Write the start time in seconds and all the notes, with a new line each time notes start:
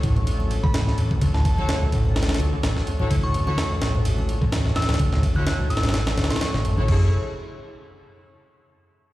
Already playing: F#3 A3 C#4 D4 A4
0.03 A1 A2, kick, ride, high conga
0.16 G#2, ride, low conga
0.27 D2, ride
0.40 high conga
0.50 C#2, ride
0.63 A1 D3 B5, kick, low conga
0.74 B5, snare, ride, high conga
0.87 D2, snare
0.98 A1 E2, ride
1.11 D2, kick, high conga
1.21 D2, kick, ride
1.34 A2 A5, snare
1.45 F#2 A5, kick, ride
1.58 D3 E4 F#4 A4 C#5, high conga
1.69 D2, snare, ride
1.82 D2, low conga
1.92 A1 A2, kick, ride
2.05 G#2, low conga
2.16 D2, snare, ride
2.23 snare, ride
2.28 snare, ride, high conga
2.34 snare, ride
2.40 C#2 D2, ride
2.53 D3, muted picked electric bass stroke
2.63 A1, snare, ride, high conga
2.76 D2, snare
2.87 E2, ride
2.99 A1 D2 E4 F#4 A4 C#5, high conga
3.10 D2, kick, ride
3.23 A2 C#6
3.34 F#2, ride
3.47 D3 E4 F#4 A4 C#5 C#6, high conga
3.58 D2 C#6, snare, ride
3.71 D2
3.81 A1 A2, snare, ride, high conga
3.94 G#2, low conga
4.05 D2, ride
4.18 high conga
4.28 C#2, ride
4.41 A1 D3, kick, low conga
4.52 snare, ride, high conga
4.65 D2, snare
4.76 A1 E2 E6, snare, ride
4.82 snare, ride
4.89 D2, snare, ride, high conga
4.94 snare, ride
4.99 D2, kick, ride
5.12 A2, snare
5.23 F#2, kick, ride
5.35 D3 E4 F#4 A4 C#5 F#6, high conga
5.47 D2 F#6, snare, ride
5.59 D2, low conga
5.70 A1 A2 E6, ride
5.77 snare, ride
5.83 G#2, snare, ride, low conga
5.89 snare, ride
5.94 D2, snare, ride
6.07 snare, ride, high conga
6.18 D2 G#2, snare, ride
6.24 snare, ride
6.30 D3 C#6, snare, ride
6.36 snare, ride
6.41 snare, ride, high conga
6.54 A1 D3, snare
6.65 A1 F#2, ride
6.78 A1 D3 E4 F#4 A4 C#5, high conga
6.88 F#1 F#2 F#3 A3 C#4 E4 G#4 A4 C#5, kick, crash